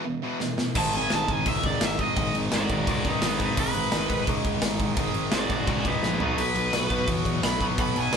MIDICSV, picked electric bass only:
0, 0, Header, 1, 2, 480
1, 0, Start_track
1, 0, Tempo, 351288
1, 1032, Time_signature, 4, 2, 24, 8
1, 11162, End_track
2, 0, Start_track
2, 0, Title_t, "Picked electric bass"
2, 0, Program_c, 0, 34
2, 1029, Note_on_c, 0, 32, 103
2, 1213, Note_off_c, 0, 32, 0
2, 1291, Note_on_c, 0, 32, 94
2, 1467, Note_off_c, 0, 32, 0
2, 1528, Note_on_c, 0, 32, 92
2, 1706, Note_off_c, 0, 32, 0
2, 1751, Note_on_c, 0, 32, 92
2, 1935, Note_off_c, 0, 32, 0
2, 1998, Note_on_c, 0, 37, 97
2, 2180, Note_off_c, 0, 37, 0
2, 2236, Note_on_c, 0, 37, 98
2, 2419, Note_off_c, 0, 37, 0
2, 2481, Note_on_c, 0, 32, 95
2, 2844, Note_off_c, 0, 32, 0
2, 2965, Note_on_c, 0, 32, 104
2, 3144, Note_off_c, 0, 32, 0
2, 3206, Note_on_c, 0, 32, 99
2, 3385, Note_off_c, 0, 32, 0
2, 3439, Note_on_c, 0, 32, 94
2, 3621, Note_off_c, 0, 32, 0
2, 3685, Note_on_c, 0, 32, 97
2, 3864, Note_off_c, 0, 32, 0
2, 3920, Note_on_c, 0, 37, 94
2, 4102, Note_off_c, 0, 37, 0
2, 4162, Note_on_c, 0, 37, 85
2, 4342, Note_off_c, 0, 37, 0
2, 4388, Note_on_c, 0, 32, 96
2, 4756, Note_off_c, 0, 32, 0
2, 4882, Note_on_c, 0, 32, 104
2, 5062, Note_off_c, 0, 32, 0
2, 5119, Note_on_c, 0, 32, 97
2, 5300, Note_off_c, 0, 32, 0
2, 5357, Note_on_c, 0, 32, 102
2, 5539, Note_off_c, 0, 32, 0
2, 5600, Note_on_c, 0, 32, 86
2, 5781, Note_off_c, 0, 32, 0
2, 5840, Note_on_c, 0, 37, 107
2, 6020, Note_off_c, 0, 37, 0
2, 6074, Note_on_c, 0, 37, 91
2, 6257, Note_off_c, 0, 37, 0
2, 6309, Note_on_c, 0, 32, 101
2, 6675, Note_off_c, 0, 32, 0
2, 6789, Note_on_c, 0, 32, 100
2, 6973, Note_off_c, 0, 32, 0
2, 7027, Note_on_c, 0, 32, 91
2, 7212, Note_off_c, 0, 32, 0
2, 7266, Note_on_c, 0, 32, 96
2, 7451, Note_off_c, 0, 32, 0
2, 7514, Note_on_c, 0, 32, 93
2, 7696, Note_off_c, 0, 32, 0
2, 7747, Note_on_c, 0, 37, 104
2, 7931, Note_off_c, 0, 37, 0
2, 7988, Note_on_c, 0, 37, 99
2, 8171, Note_off_c, 0, 37, 0
2, 8239, Note_on_c, 0, 34, 86
2, 8418, Note_off_c, 0, 34, 0
2, 8467, Note_on_c, 0, 35, 90
2, 8650, Note_off_c, 0, 35, 0
2, 8705, Note_on_c, 0, 35, 107
2, 8889, Note_off_c, 0, 35, 0
2, 8943, Note_on_c, 0, 35, 90
2, 9128, Note_off_c, 0, 35, 0
2, 9191, Note_on_c, 0, 35, 95
2, 9372, Note_off_c, 0, 35, 0
2, 9432, Note_on_c, 0, 35, 87
2, 9613, Note_off_c, 0, 35, 0
2, 9665, Note_on_c, 0, 40, 91
2, 9848, Note_off_c, 0, 40, 0
2, 9908, Note_on_c, 0, 40, 82
2, 10090, Note_off_c, 0, 40, 0
2, 10139, Note_on_c, 0, 35, 104
2, 10506, Note_off_c, 0, 35, 0
2, 10633, Note_on_c, 0, 35, 100
2, 10812, Note_off_c, 0, 35, 0
2, 10859, Note_on_c, 0, 35, 97
2, 11043, Note_off_c, 0, 35, 0
2, 11111, Note_on_c, 0, 35, 102
2, 11162, Note_off_c, 0, 35, 0
2, 11162, End_track
0, 0, End_of_file